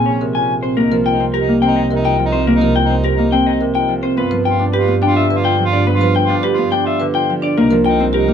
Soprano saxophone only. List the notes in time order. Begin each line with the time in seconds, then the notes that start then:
0.04 C#4
0.34 C#4
0.78 D#4
1.08 D#4
1.37 D#4
1.67 D#4
1.96 D#4
2.25 D#4
2.55 D#4
2.85 D#4
3.14 D#4
3.44 D#4
3.74 D#4
4.17 F4
4.46 F4
4.75 F4
5.05 F4
5.35 F4
5.65 F4
5.94 F4
6.24 F4
6.53 F4
6.83 F4
7.13 F4
7.57 D#4
7.86 D#4
8.16 D#4